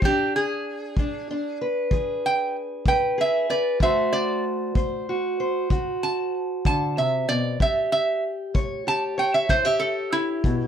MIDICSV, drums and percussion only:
0, 0, Header, 1, 2, 480
1, 0, Start_track
1, 0, Tempo, 630915
1, 24, Time_signature, 12, 3, 24, 8
1, 8121, End_track
2, 0, Start_track
2, 0, Title_t, "Drums"
2, 16, Note_on_c, 9, 36, 65
2, 92, Note_off_c, 9, 36, 0
2, 735, Note_on_c, 9, 36, 66
2, 811, Note_off_c, 9, 36, 0
2, 1454, Note_on_c, 9, 36, 62
2, 1530, Note_off_c, 9, 36, 0
2, 2172, Note_on_c, 9, 36, 66
2, 2248, Note_off_c, 9, 36, 0
2, 2892, Note_on_c, 9, 36, 62
2, 2969, Note_off_c, 9, 36, 0
2, 3616, Note_on_c, 9, 36, 73
2, 3692, Note_off_c, 9, 36, 0
2, 4339, Note_on_c, 9, 36, 72
2, 4415, Note_off_c, 9, 36, 0
2, 5061, Note_on_c, 9, 36, 68
2, 5137, Note_off_c, 9, 36, 0
2, 5784, Note_on_c, 9, 36, 66
2, 5860, Note_off_c, 9, 36, 0
2, 6504, Note_on_c, 9, 36, 77
2, 6580, Note_off_c, 9, 36, 0
2, 7223, Note_on_c, 9, 36, 67
2, 7299, Note_off_c, 9, 36, 0
2, 7943, Note_on_c, 9, 36, 70
2, 8019, Note_off_c, 9, 36, 0
2, 8121, End_track
0, 0, End_of_file